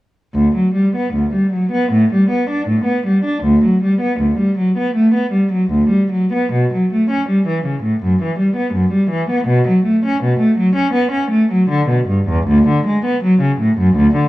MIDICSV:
0, 0, Header, 1, 2, 480
1, 0, Start_track
1, 0, Key_signature, 2, "major"
1, 0, Tempo, 823045
1, 199, Time_signature, 4, 2, 24, 8
1, 669, Tempo, 776197
1, 1149, Tempo, 755668
1, 3549, Tempo, 783290
1, 4509, Tempo, 736196
1, 7389, Tempo, 751880
1, 9049, End_track
2, 0, Start_track
2, 0, Title_t, "Cello"
2, 0, Program_c, 0, 42
2, 198, Note_on_c, 0, 38, 70
2, 320, Note_off_c, 0, 38, 0
2, 322, Note_on_c, 0, 54, 55
2, 434, Note_on_c, 0, 55, 54
2, 439, Note_off_c, 0, 54, 0
2, 550, Note_off_c, 0, 55, 0
2, 558, Note_on_c, 0, 59, 56
2, 666, Note_on_c, 0, 38, 54
2, 668, Note_off_c, 0, 59, 0
2, 784, Note_on_c, 0, 55, 54
2, 785, Note_off_c, 0, 38, 0
2, 903, Note_on_c, 0, 54, 51
2, 904, Note_off_c, 0, 55, 0
2, 1021, Note_on_c, 0, 59, 67
2, 1024, Note_off_c, 0, 54, 0
2, 1143, Note_off_c, 0, 59, 0
2, 1148, Note_on_c, 0, 45, 71
2, 1270, Note_off_c, 0, 45, 0
2, 1283, Note_on_c, 0, 55, 58
2, 1388, Note_on_c, 0, 59, 59
2, 1398, Note_off_c, 0, 55, 0
2, 1510, Note_off_c, 0, 59, 0
2, 1515, Note_on_c, 0, 62, 61
2, 1629, Note_on_c, 0, 45, 64
2, 1633, Note_off_c, 0, 62, 0
2, 1736, Note_on_c, 0, 59, 59
2, 1750, Note_off_c, 0, 45, 0
2, 1863, Note_off_c, 0, 59, 0
2, 1874, Note_on_c, 0, 55, 56
2, 1989, Note_on_c, 0, 62, 65
2, 1992, Note_off_c, 0, 55, 0
2, 2109, Note_off_c, 0, 62, 0
2, 2110, Note_on_c, 0, 38, 74
2, 2229, Note_off_c, 0, 38, 0
2, 2245, Note_on_c, 0, 54, 54
2, 2356, Note_off_c, 0, 54, 0
2, 2363, Note_on_c, 0, 55, 54
2, 2472, Note_on_c, 0, 59, 60
2, 2475, Note_off_c, 0, 55, 0
2, 2590, Note_off_c, 0, 59, 0
2, 2596, Note_on_c, 0, 38, 55
2, 2712, Note_on_c, 0, 55, 57
2, 2713, Note_off_c, 0, 38, 0
2, 2831, Note_off_c, 0, 55, 0
2, 2837, Note_on_c, 0, 54, 59
2, 2953, Note_off_c, 0, 54, 0
2, 2961, Note_on_c, 0, 59, 61
2, 3073, Note_off_c, 0, 59, 0
2, 3076, Note_on_c, 0, 57, 68
2, 3190, Note_off_c, 0, 57, 0
2, 3193, Note_on_c, 0, 59, 62
2, 3306, Note_on_c, 0, 55, 59
2, 3308, Note_off_c, 0, 59, 0
2, 3425, Note_off_c, 0, 55, 0
2, 3436, Note_on_c, 0, 54, 60
2, 3550, Note_off_c, 0, 54, 0
2, 3552, Note_on_c, 0, 38, 62
2, 3666, Note_off_c, 0, 38, 0
2, 3666, Note_on_c, 0, 55, 58
2, 3786, Note_off_c, 0, 55, 0
2, 3804, Note_on_c, 0, 54, 57
2, 3918, Note_off_c, 0, 54, 0
2, 3934, Note_on_c, 0, 59, 64
2, 4047, Note_off_c, 0, 59, 0
2, 4054, Note_on_c, 0, 47, 73
2, 4168, Note_off_c, 0, 47, 0
2, 4186, Note_on_c, 0, 54, 57
2, 4291, Note_off_c, 0, 54, 0
2, 4302, Note_on_c, 0, 57, 57
2, 4404, Note_off_c, 0, 57, 0
2, 4408, Note_on_c, 0, 61, 61
2, 4513, Note_off_c, 0, 61, 0
2, 4523, Note_on_c, 0, 55, 62
2, 4632, Note_off_c, 0, 55, 0
2, 4644, Note_on_c, 0, 52, 60
2, 4752, Note_off_c, 0, 52, 0
2, 4761, Note_on_c, 0, 49, 56
2, 4870, Note_off_c, 0, 49, 0
2, 4877, Note_on_c, 0, 45, 60
2, 4987, Note_off_c, 0, 45, 0
2, 5008, Note_on_c, 0, 42, 72
2, 5112, Note_off_c, 0, 42, 0
2, 5133, Note_on_c, 0, 52, 64
2, 5233, Note_off_c, 0, 52, 0
2, 5240, Note_on_c, 0, 55, 59
2, 5345, Note_off_c, 0, 55, 0
2, 5353, Note_on_c, 0, 59, 60
2, 5462, Note_off_c, 0, 59, 0
2, 5468, Note_on_c, 0, 42, 68
2, 5579, Note_off_c, 0, 42, 0
2, 5587, Note_on_c, 0, 55, 58
2, 5700, Note_off_c, 0, 55, 0
2, 5707, Note_on_c, 0, 52, 62
2, 5822, Note_off_c, 0, 52, 0
2, 5835, Note_on_c, 0, 59, 67
2, 5945, Note_on_c, 0, 47, 83
2, 5947, Note_off_c, 0, 59, 0
2, 6063, Note_off_c, 0, 47, 0
2, 6082, Note_on_c, 0, 54, 62
2, 6192, Note_off_c, 0, 54, 0
2, 6193, Note_on_c, 0, 57, 66
2, 6308, Note_off_c, 0, 57, 0
2, 6325, Note_on_c, 0, 61, 69
2, 6434, Note_off_c, 0, 61, 0
2, 6442, Note_on_c, 0, 47, 69
2, 6550, Note_on_c, 0, 57, 66
2, 6552, Note_off_c, 0, 47, 0
2, 6665, Note_off_c, 0, 57, 0
2, 6669, Note_on_c, 0, 54, 71
2, 6781, Note_on_c, 0, 61, 75
2, 6785, Note_off_c, 0, 54, 0
2, 6900, Note_on_c, 0, 59, 75
2, 6901, Note_off_c, 0, 61, 0
2, 7018, Note_on_c, 0, 61, 68
2, 7020, Note_off_c, 0, 59, 0
2, 7140, Note_off_c, 0, 61, 0
2, 7143, Note_on_c, 0, 57, 73
2, 7263, Note_off_c, 0, 57, 0
2, 7280, Note_on_c, 0, 54, 68
2, 7392, Note_off_c, 0, 54, 0
2, 7399, Note_on_c, 0, 50, 83
2, 7511, Note_off_c, 0, 50, 0
2, 7519, Note_on_c, 0, 47, 69
2, 7632, Note_off_c, 0, 47, 0
2, 7643, Note_on_c, 0, 43, 64
2, 7757, Note_off_c, 0, 43, 0
2, 7774, Note_on_c, 0, 40, 71
2, 7886, Note_off_c, 0, 40, 0
2, 7892, Note_on_c, 0, 38, 92
2, 8008, Note_off_c, 0, 38, 0
2, 8025, Note_on_c, 0, 50, 67
2, 8134, Note_off_c, 0, 50, 0
2, 8142, Note_on_c, 0, 56, 73
2, 8251, Note_off_c, 0, 56, 0
2, 8261, Note_on_c, 0, 59, 70
2, 8369, Note_off_c, 0, 59, 0
2, 8379, Note_on_c, 0, 54, 82
2, 8487, Note_off_c, 0, 54, 0
2, 8491, Note_on_c, 0, 49, 66
2, 8601, Note_off_c, 0, 49, 0
2, 8617, Note_on_c, 0, 45, 64
2, 8723, Note_off_c, 0, 45, 0
2, 8729, Note_on_c, 0, 42, 79
2, 8836, Note_off_c, 0, 42, 0
2, 8842, Note_on_c, 0, 38, 91
2, 8952, Note_off_c, 0, 38, 0
2, 8969, Note_on_c, 0, 50, 68
2, 9049, Note_off_c, 0, 50, 0
2, 9049, End_track
0, 0, End_of_file